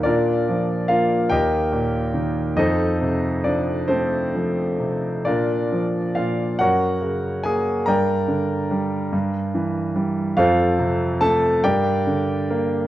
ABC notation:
X:1
M:6/8
L:1/8
Q:3/8=47
K:Bb
V:1 name="Grand piano"
[DFBd]2 [Ff] [GBeg]3 | [EAce]2 [Dd] [CAc]2 z | [DFBd]2 [Ff] [_GB_d_g]2 [_A_a] | [Bdgb]4- [Bdgb] z |
[FAcf]2 [Aa] [GBdg]3 |]
V:2 name="Grand piano" clef=bass
B,, F, B, E,, B,, E, | F,, C, F, A, F, C, | B,, F, B,, _G,, _D, B, | G,, D, G, G,, =E, G, |
F,, C, A, G,, D, B, |]